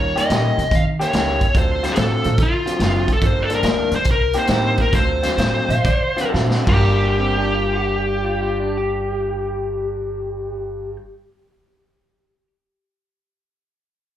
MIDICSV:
0, 0, Header, 1, 7, 480
1, 0, Start_track
1, 0, Key_signature, -2, "minor"
1, 0, Tempo, 417827
1, 1783, Time_signature, 4, 2, 24, 8
1, 4664, Tempo, 434468
1, 5624, Tempo, 460123
1, 6584, Tempo, 496689
1, 7544, Tempo, 519481
1, 14312, End_track
2, 0, Start_track
2, 0, Title_t, "Lead electric guitar"
2, 0, Program_c, 0, 29
2, 0, Note_on_c, 0, 73, 90
2, 210, Note_off_c, 0, 73, 0
2, 215, Note_on_c, 0, 75, 100
2, 855, Note_off_c, 0, 75, 0
2, 865, Note_on_c, 0, 77, 101
2, 947, Note_off_c, 0, 77, 0
2, 1177, Note_on_c, 0, 73, 99
2, 1811, Note_off_c, 0, 73, 0
2, 1815, Note_on_c, 0, 72, 98
2, 2119, Note_off_c, 0, 72, 0
2, 2133, Note_on_c, 0, 72, 92
2, 2206, Note_on_c, 0, 68, 67
2, 2225, Note_off_c, 0, 72, 0
2, 2260, Note_off_c, 0, 68, 0
2, 2289, Note_on_c, 0, 69, 92
2, 2768, Note_off_c, 0, 69, 0
2, 2781, Note_on_c, 0, 65, 87
2, 3588, Note_off_c, 0, 65, 0
2, 3591, Note_on_c, 0, 69, 82
2, 3713, Note_off_c, 0, 69, 0
2, 3750, Note_on_c, 0, 72, 94
2, 3932, Note_on_c, 0, 69, 68
2, 3946, Note_off_c, 0, 72, 0
2, 4032, Note_off_c, 0, 69, 0
2, 4072, Note_on_c, 0, 70, 87
2, 4539, Note_off_c, 0, 70, 0
2, 4544, Note_on_c, 0, 72, 87
2, 4686, Note_off_c, 0, 72, 0
2, 4721, Note_on_c, 0, 70, 90
2, 4993, Note_off_c, 0, 70, 0
2, 5026, Note_on_c, 0, 72, 90
2, 5491, Note_off_c, 0, 72, 0
2, 5496, Note_on_c, 0, 70, 79
2, 5642, Note_off_c, 0, 70, 0
2, 5658, Note_on_c, 0, 72, 85
2, 7030, Note_off_c, 0, 72, 0
2, 7397, Note_on_c, 0, 67, 85
2, 11352, Note_off_c, 0, 67, 0
2, 14312, End_track
3, 0, Start_track
3, 0, Title_t, "Clean electric guitar"
3, 0, Program_c, 1, 27
3, 6429, Note_on_c, 1, 77, 100
3, 6584, Note_off_c, 1, 77, 0
3, 6595, Note_on_c, 1, 74, 75
3, 6767, Note_off_c, 1, 74, 0
3, 6767, Note_on_c, 1, 72, 77
3, 6905, Note_off_c, 1, 72, 0
3, 6913, Note_on_c, 1, 66, 82
3, 7049, Note_off_c, 1, 66, 0
3, 7060, Note_on_c, 1, 66, 86
3, 7377, Note_off_c, 1, 66, 0
3, 7872, Note_on_c, 1, 60, 85
3, 8023, Note_off_c, 1, 60, 0
3, 8043, Note_on_c, 1, 62, 70
3, 8191, Note_off_c, 1, 62, 0
3, 8191, Note_on_c, 1, 65, 82
3, 8343, Note_off_c, 1, 65, 0
3, 8362, Note_on_c, 1, 67, 88
3, 8819, Note_off_c, 1, 67, 0
3, 8841, Note_on_c, 1, 65, 75
3, 8988, Note_off_c, 1, 65, 0
3, 9005, Note_on_c, 1, 65, 81
3, 9166, Note_off_c, 1, 65, 0
3, 9166, Note_on_c, 1, 62, 78
3, 9310, Note_off_c, 1, 62, 0
3, 9328, Note_on_c, 1, 67, 85
3, 12745, Note_off_c, 1, 67, 0
3, 14312, End_track
4, 0, Start_track
4, 0, Title_t, "Upright piano"
4, 0, Program_c, 2, 0
4, 0, Note_on_c, 2, 55, 56
4, 0, Note_on_c, 2, 61, 53
4, 0, Note_on_c, 2, 63, 52
4, 0, Note_on_c, 2, 65, 52
4, 0, Note_on_c, 2, 70, 64
4, 316, Note_off_c, 2, 55, 0
4, 316, Note_off_c, 2, 61, 0
4, 319, Note_off_c, 2, 63, 0
4, 322, Note_off_c, 2, 65, 0
4, 324, Note_off_c, 2, 70, 0
4, 333, Note_on_c, 2, 55, 57
4, 340, Note_on_c, 2, 61, 53
4, 343, Note_on_c, 2, 63, 52
4, 348, Note_on_c, 2, 65, 54
4, 356, Note_on_c, 2, 70, 65
4, 631, Note_off_c, 2, 55, 0
4, 635, Note_off_c, 2, 61, 0
4, 636, Note_off_c, 2, 63, 0
4, 639, Note_off_c, 2, 65, 0
4, 643, Note_off_c, 2, 70, 0
4, 1771, Note_on_c, 2, 54, 64
4, 1773, Note_on_c, 2, 60, 62
4, 1782, Note_on_c, 2, 65, 60
4, 1783, Note_on_c, 2, 62, 61
4, 1791, Note_on_c, 2, 69, 74
4, 2069, Note_off_c, 2, 54, 0
4, 2070, Note_off_c, 2, 60, 0
4, 2075, Note_off_c, 2, 65, 0
4, 2076, Note_off_c, 2, 62, 0
4, 2079, Note_off_c, 2, 69, 0
4, 2579, Note_on_c, 2, 54, 72
4, 2581, Note_on_c, 2, 60, 68
4, 2587, Note_on_c, 2, 62, 63
4, 2592, Note_on_c, 2, 65, 65
4, 2595, Note_on_c, 2, 69, 77
4, 2722, Note_off_c, 2, 54, 0
4, 2723, Note_off_c, 2, 60, 0
4, 2725, Note_off_c, 2, 62, 0
4, 2728, Note_off_c, 2, 65, 0
4, 2730, Note_off_c, 2, 69, 0
4, 3692, Note_on_c, 2, 55, 61
4, 3699, Note_on_c, 2, 58, 54
4, 3700, Note_on_c, 2, 62, 58
4, 3706, Note_on_c, 2, 69, 64
4, 3707, Note_on_c, 2, 65, 57
4, 3988, Note_off_c, 2, 55, 0
4, 3991, Note_off_c, 2, 58, 0
4, 3992, Note_off_c, 2, 62, 0
4, 3995, Note_off_c, 2, 65, 0
4, 3995, Note_off_c, 2, 69, 0
4, 5123, Note_on_c, 2, 55, 62
4, 5129, Note_on_c, 2, 60, 59
4, 5134, Note_on_c, 2, 62, 57
4, 5139, Note_on_c, 2, 63, 61
4, 5140, Note_on_c, 2, 69, 73
4, 5426, Note_off_c, 2, 55, 0
4, 5429, Note_off_c, 2, 60, 0
4, 5431, Note_off_c, 2, 62, 0
4, 5434, Note_off_c, 2, 63, 0
4, 5435, Note_off_c, 2, 69, 0
4, 5614, Note_on_c, 2, 60, 61
4, 5618, Note_on_c, 2, 62, 62
4, 5619, Note_on_c, 2, 54, 66
4, 5630, Note_on_c, 2, 65, 64
4, 5633, Note_on_c, 2, 69, 75
4, 5906, Note_off_c, 2, 60, 0
4, 5908, Note_off_c, 2, 54, 0
4, 5908, Note_off_c, 2, 62, 0
4, 5913, Note_off_c, 2, 65, 0
4, 5915, Note_off_c, 2, 69, 0
4, 7037, Note_on_c, 2, 54, 64
4, 7045, Note_on_c, 2, 60, 59
4, 7046, Note_on_c, 2, 62, 61
4, 7050, Note_on_c, 2, 65, 58
4, 7054, Note_on_c, 2, 69, 72
4, 7325, Note_on_c, 2, 43, 68
4, 7342, Note_off_c, 2, 54, 0
4, 7345, Note_off_c, 2, 60, 0
4, 7346, Note_off_c, 2, 62, 0
4, 7348, Note_off_c, 2, 65, 0
4, 7350, Note_off_c, 2, 69, 0
4, 7356, Note_on_c, 2, 55, 61
4, 7383, Note_on_c, 2, 58, 59
4, 7418, Note_on_c, 2, 65, 64
4, 11321, Note_off_c, 2, 43, 0
4, 11350, Note_off_c, 2, 55, 0
4, 11376, Note_off_c, 2, 58, 0
4, 11410, Note_off_c, 2, 65, 0
4, 14312, End_track
5, 0, Start_track
5, 0, Title_t, "Clean electric guitar"
5, 0, Program_c, 3, 27
5, 181, Note_on_c, 3, 67, 90
5, 190, Note_on_c, 3, 61, 95
5, 197, Note_on_c, 3, 58, 82
5, 198, Note_on_c, 3, 51, 79
5, 329, Note_off_c, 3, 51, 0
5, 335, Note_off_c, 3, 58, 0
5, 339, Note_off_c, 3, 61, 0
5, 340, Note_off_c, 3, 67, 0
5, 343, Note_on_c, 3, 51, 70
5, 349, Note_on_c, 3, 58, 69
5, 353, Note_on_c, 3, 61, 73
5, 356, Note_on_c, 3, 67, 76
5, 715, Note_off_c, 3, 51, 0
5, 718, Note_off_c, 3, 58, 0
5, 720, Note_off_c, 3, 61, 0
5, 722, Note_off_c, 3, 67, 0
5, 1143, Note_on_c, 3, 67, 86
5, 1150, Note_on_c, 3, 61, 78
5, 1152, Note_on_c, 3, 58, 71
5, 1162, Note_on_c, 3, 51, 75
5, 1288, Note_off_c, 3, 51, 0
5, 1292, Note_off_c, 3, 58, 0
5, 1298, Note_off_c, 3, 61, 0
5, 1300, Note_off_c, 3, 67, 0
5, 1302, Note_on_c, 3, 51, 71
5, 1306, Note_on_c, 3, 58, 77
5, 1312, Note_on_c, 3, 61, 76
5, 1316, Note_on_c, 3, 67, 87
5, 1674, Note_off_c, 3, 51, 0
5, 1676, Note_off_c, 3, 58, 0
5, 1679, Note_off_c, 3, 61, 0
5, 1681, Note_off_c, 3, 67, 0
5, 2104, Note_on_c, 3, 65, 92
5, 2109, Note_on_c, 3, 60, 88
5, 2110, Note_on_c, 3, 54, 89
5, 2113, Note_on_c, 3, 50, 84
5, 2246, Note_off_c, 3, 50, 0
5, 2248, Note_off_c, 3, 54, 0
5, 2257, Note_off_c, 3, 65, 0
5, 2258, Note_off_c, 3, 60, 0
5, 2259, Note_on_c, 3, 50, 75
5, 2262, Note_on_c, 3, 54, 71
5, 2271, Note_on_c, 3, 65, 71
5, 2272, Note_on_c, 3, 60, 76
5, 2632, Note_off_c, 3, 50, 0
5, 2633, Note_off_c, 3, 54, 0
5, 2637, Note_off_c, 3, 65, 0
5, 2638, Note_off_c, 3, 60, 0
5, 3056, Note_on_c, 3, 65, 88
5, 3065, Note_on_c, 3, 60, 82
5, 3066, Note_on_c, 3, 50, 73
5, 3068, Note_on_c, 3, 54, 75
5, 3198, Note_off_c, 3, 50, 0
5, 3203, Note_off_c, 3, 54, 0
5, 3204, Note_off_c, 3, 60, 0
5, 3211, Note_off_c, 3, 65, 0
5, 3211, Note_on_c, 3, 50, 78
5, 3216, Note_on_c, 3, 54, 78
5, 3218, Note_on_c, 3, 60, 76
5, 3224, Note_on_c, 3, 65, 84
5, 3587, Note_off_c, 3, 50, 0
5, 3589, Note_off_c, 3, 54, 0
5, 3590, Note_off_c, 3, 60, 0
5, 3593, Note_off_c, 3, 65, 0
5, 4020, Note_on_c, 3, 62, 99
5, 4023, Note_on_c, 3, 58, 85
5, 4026, Note_on_c, 3, 53, 89
5, 4036, Note_on_c, 3, 43, 83
5, 4157, Note_off_c, 3, 43, 0
5, 4162, Note_off_c, 3, 53, 0
5, 4166, Note_off_c, 3, 58, 0
5, 4171, Note_on_c, 3, 43, 71
5, 4172, Note_off_c, 3, 62, 0
5, 4176, Note_on_c, 3, 53, 78
5, 4180, Note_on_c, 3, 58, 77
5, 4186, Note_on_c, 3, 62, 80
5, 4550, Note_off_c, 3, 43, 0
5, 4552, Note_off_c, 3, 53, 0
5, 4555, Note_off_c, 3, 58, 0
5, 4558, Note_off_c, 3, 62, 0
5, 4977, Note_on_c, 3, 67, 95
5, 4983, Note_on_c, 3, 63, 86
5, 4988, Note_on_c, 3, 58, 87
5, 4990, Note_on_c, 3, 48, 74
5, 5116, Note_off_c, 3, 48, 0
5, 5125, Note_off_c, 3, 58, 0
5, 5127, Note_off_c, 3, 63, 0
5, 5130, Note_on_c, 3, 48, 77
5, 5132, Note_off_c, 3, 67, 0
5, 5138, Note_on_c, 3, 58, 80
5, 5140, Note_on_c, 3, 63, 83
5, 5145, Note_on_c, 3, 67, 86
5, 5510, Note_off_c, 3, 48, 0
5, 5514, Note_off_c, 3, 58, 0
5, 5515, Note_off_c, 3, 63, 0
5, 5517, Note_off_c, 3, 67, 0
5, 5937, Note_on_c, 3, 65, 90
5, 5940, Note_on_c, 3, 60, 82
5, 5947, Note_on_c, 3, 54, 86
5, 5953, Note_on_c, 3, 50, 71
5, 6077, Note_off_c, 3, 50, 0
5, 6082, Note_off_c, 3, 54, 0
5, 6082, Note_off_c, 3, 60, 0
5, 6088, Note_off_c, 3, 65, 0
5, 6090, Note_on_c, 3, 50, 67
5, 6094, Note_on_c, 3, 54, 72
5, 6095, Note_on_c, 3, 60, 70
5, 6101, Note_on_c, 3, 65, 76
5, 6469, Note_off_c, 3, 50, 0
5, 6471, Note_off_c, 3, 54, 0
5, 6472, Note_off_c, 3, 60, 0
5, 6475, Note_off_c, 3, 65, 0
5, 6890, Note_on_c, 3, 65, 93
5, 6898, Note_on_c, 3, 60, 88
5, 6902, Note_on_c, 3, 54, 83
5, 6905, Note_on_c, 3, 50, 73
5, 7033, Note_off_c, 3, 50, 0
5, 7038, Note_off_c, 3, 54, 0
5, 7041, Note_off_c, 3, 60, 0
5, 7044, Note_off_c, 3, 65, 0
5, 7044, Note_on_c, 3, 50, 68
5, 7049, Note_on_c, 3, 54, 78
5, 7053, Note_on_c, 3, 60, 77
5, 7056, Note_on_c, 3, 65, 83
5, 7354, Note_off_c, 3, 54, 0
5, 7358, Note_on_c, 3, 55, 96
5, 7373, Note_off_c, 3, 60, 0
5, 7373, Note_off_c, 3, 65, 0
5, 7377, Note_on_c, 3, 62, 95
5, 7379, Note_off_c, 3, 50, 0
5, 7385, Note_on_c, 3, 65, 99
5, 7399, Note_on_c, 3, 70, 93
5, 11352, Note_off_c, 3, 55, 0
5, 11371, Note_off_c, 3, 62, 0
5, 11378, Note_off_c, 3, 65, 0
5, 11392, Note_off_c, 3, 70, 0
5, 14312, End_track
6, 0, Start_track
6, 0, Title_t, "Upright bass"
6, 0, Program_c, 4, 32
6, 0, Note_on_c, 4, 39, 83
6, 170, Note_off_c, 4, 39, 0
6, 345, Note_on_c, 4, 46, 88
6, 551, Note_off_c, 4, 46, 0
6, 667, Note_on_c, 4, 48, 84
6, 766, Note_off_c, 4, 48, 0
6, 821, Note_on_c, 4, 51, 88
6, 1127, Note_off_c, 4, 51, 0
6, 1304, Note_on_c, 4, 37, 86
6, 1609, Note_off_c, 4, 37, 0
6, 1777, Note_on_c, 4, 38, 88
6, 2084, Note_off_c, 4, 38, 0
6, 2268, Note_on_c, 4, 45, 88
6, 2473, Note_off_c, 4, 45, 0
6, 2590, Note_on_c, 4, 46, 80
6, 2687, Note_off_c, 4, 46, 0
6, 2737, Note_on_c, 4, 50, 85
6, 3043, Note_off_c, 4, 50, 0
6, 3212, Note_on_c, 4, 30, 90
6, 3519, Note_off_c, 4, 30, 0
6, 3704, Note_on_c, 4, 31, 85
6, 4008, Note_off_c, 4, 31, 0
6, 4170, Note_on_c, 4, 38, 91
6, 4382, Note_off_c, 4, 38, 0
6, 4500, Note_on_c, 4, 38, 86
6, 4659, Note_off_c, 4, 38, 0
6, 4659, Note_on_c, 4, 36, 88
6, 4963, Note_off_c, 4, 36, 0
6, 5135, Note_on_c, 4, 45, 94
6, 5445, Note_off_c, 4, 45, 0
6, 5626, Note_on_c, 4, 38, 93
6, 5926, Note_off_c, 4, 38, 0
6, 6091, Note_on_c, 4, 45, 89
6, 6302, Note_off_c, 4, 45, 0
6, 6414, Note_on_c, 4, 46, 88
6, 6519, Note_off_c, 4, 46, 0
6, 6588, Note_on_c, 4, 50, 89
6, 6885, Note_off_c, 4, 50, 0
6, 7059, Note_on_c, 4, 46, 90
6, 7267, Note_off_c, 4, 46, 0
6, 7378, Note_on_c, 4, 31, 93
6, 11335, Note_off_c, 4, 31, 0
6, 14312, End_track
7, 0, Start_track
7, 0, Title_t, "Drums"
7, 197, Note_on_c, 9, 42, 60
7, 312, Note_off_c, 9, 42, 0
7, 344, Note_on_c, 9, 42, 86
7, 362, Note_on_c, 9, 38, 109
7, 459, Note_off_c, 9, 42, 0
7, 477, Note_off_c, 9, 38, 0
7, 673, Note_on_c, 9, 42, 60
7, 788, Note_off_c, 9, 42, 0
7, 820, Note_on_c, 9, 36, 102
7, 827, Note_on_c, 9, 42, 89
7, 935, Note_off_c, 9, 36, 0
7, 942, Note_off_c, 9, 42, 0
7, 1159, Note_on_c, 9, 42, 62
7, 1274, Note_off_c, 9, 42, 0
7, 1299, Note_on_c, 9, 42, 80
7, 1317, Note_on_c, 9, 38, 110
7, 1414, Note_off_c, 9, 42, 0
7, 1432, Note_off_c, 9, 38, 0
7, 1619, Note_on_c, 9, 42, 62
7, 1623, Note_on_c, 9, 36, 75
7, 1733, Note_off_c, 9, 42, 0
7, 1738, Note_off_c, 9, 36, 0
7, 1778, Note_on_c, 9, 36, 112
7, 1779, Note_on_c, 9, 42, 76
7, 1893, Note_off_c, 9, 36, 0
7, 1894, Note_off_c, 9, 42, 0
7, 2108, Note_on_c, 9, 42, 62
7, 2127, Note_on_c, 9, 38, 33
7, 2223, Note_off_c, 9, 42, 0
7, 2241, Note_off_c, 9, 38, 0
7, 2247, Note_on_c, 9, 42, 81
7, 2266, Note_on_c, 9, 38, 109
7, 2362, Note_off_c, 9, 42, 0
7, 2381, Note_off_c, 9, 38, 0
7, 2575, Note_on_c, 9, 42, 55
7, 2690, Note_off_c, 9, 42, 0
7, 2730, Note_on_c, 9, 42, 83
7, 2736, Note_on_c, 9, 36, 107
7, 2845, Note_off_c, 9, 42, 0
7, 2851, Note_off_c, 9, 36, 0
7, 3068, Note_on_c, 9, 42, 59
7, 3183, Note_off_c, 9, 42, 0
7, 3217, Note_on_c, 9, 42, 70
7, 3235, Note_on_c, 9, 38, 104
7, 3332, Note_off_c, 9, 42, 0
7, 3350, Note_off_c, 9, 38, 0
7, 3539, Note_on_c, 9, 42, 57
7, 3540, Note_on_c, 9, 36, 75
7, 3654, Note_off_c, 9, 42, 0
7, 3655, Note_off_c, 9, 36, 0
7, 3696, Note_on_c, 9, 36, 107
7, 3698, Note_on_c, 9, 42, 74
7, 3811, Note_off_c, 9, 36, 0
7, 3812, Note_off_c, 9, 42, 0
7, 4015, Note_on_c, 9, 42, 62
7, 4130, Note_off_c, 9, 42, 0
7, 4168, Note_on_c, 9, 42, 89
7, 4186, Note_on_c, 9, 38, 111
7, 4283, Note_off_c, 9, 42, 0
7, 4301, Note_off_c, 9, 38, 0
7, 4496, Note_on_c, 9, 42, 63
7, 4611, Note_off_c, 9, 42, 0
7, 4646, Note_on_c, 9, 42, 89
7, 4658, Note_on_c, 9, 36, 113
7, 4757, Note_off_c, 9, 42, 0
7, 4769, Note_off_c, 9, 36, 0
7, 4965, Note_on_c, 9, 42, 65
7, 5076, Note_off_c, 9, 42, 0
7, 5120, Note_on_c, 9, 42, 85
7, 5137, Note_on_c, 9, 38, 107
7, 5230, Note_off_c, 9, 42, 0
7, 5248, Note_off_c, 9, 38, 0
7, 5453, Note_on_c, 9, 42, 59
7, 5463, Note_on_c, 9, 36, 73
7, 5564, Note_off_c, 9, 42, 0
7, 5573, Note_off_c, 9, 36, 0
7, 5621, Note_on_c, 9, 42, 86
7, 5624, Note_on_c, 9, 36, 108
7, 5725, Note_off_c, 9, 42, 0
7, 5728, Note_off_c, 9, 36, 0
7, 5940, Note_on_c, 9, 42, 65
7, 5957, Note_on_c, 9, 38, 33
7, 6044, Note_off_c, 9, 42, 0
7, 6061, Note_off_c, 9, 38, 0
7, 6095, Note_on_c, 9, 42, 82
7, 6112, Note_on_c, 9, 38, 109
7, 6199, Note_off_c, 9, 42, 0
7, 6216, Note_off_c, 9, 38, 0
7, 6428, Note_on_c, 9, 42, 59
7, 6533, Note_off_c, 9, 42, 0
7, 6580, Note_on_c, 9, 42, 79
7, 6582, Note_on_c, 9, 36, 108
7, 6677, Note_off_c, 9, 42, 0
7, 6679, Note_off_c, 9, 36, 0
7, 6902, Note_on_c, 9, 42, 56
7, 6998, Note_off_c, 9, 42, 0
7, 7064, Note_on_c, 9, 38, 58
7, 7160, Note_off_c, 9, 38, 0
7, 7219, Note_on_c, 9, 38, 70
7, 7316, Note_off_c, 9, 38, 0
7, 7377, Note_on_c, 9, 49, 84
7, 7379, Note_on_c, 9, 36, 102
7, 7474, Note_off_c, 9, 49, 0
7, 7476, Note_off_c, 9, 36, 0
7, 14312, End_track
0, 0, End_of_file